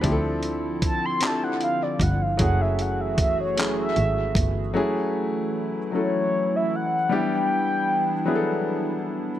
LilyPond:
<<
  \new Staff \with { instrumentName = "Soft synth lead" } { \time 6/8 \key d \major \tempo 4. = 51 b''16 r8. a''16 c'''16 a''16 fis''16 f''16 d''16 fis''16 f''16 | fis''16 e''16 fis''16 e''16 e''16 cis''8 e''4~ e''16 | r4. cis''8. e''16 fis''8 | g''2 r4 | }
  \new Staff \with { instrumentName = "Grand piano" } { \time 6/8 \key d \major <f c' d' e' g' a'>4. <f c' d' e' g' a'>4. | <fis a cis' e' gis'>4. <fis a cis' e' gis'>4. | <fis a cis' e' gis'>4. <fis a cis' e' a'>4. | <g b d' e' g'>4. <fis b d' e' gis' a'>4. | }
  \new Staff \with { instrumentName = "Analog synth pad" } { \time 6/8 \key d \major << { <d e'>2. | <e fis'>2. | <e e'>2.~ | <e e'>2. | } \\ { <f c'>2. | <a gis'>2. | <fis a>2. | <b d'>2. | } >> }
  \new Staff \with { instrumentName = "Double bass" } { \clef bass \time 6/8 \key d \major d,2~ d,8 g,,8 | fis,,2 gis,,8 g,,8 | r2. | r2. | }
  \new DrumStaff \with { instrumentName = "Drums" } \drummode { \time 6/8 <hh bd>8 hh8 <hh bd>8 <hc hh>8 hh8 <hh bd>8 | <hh bd>8 hh8 <hh bd>8 <hc hh>8 hh8 <hh bd>8 | r4. r4. | r4. r4. | }
>>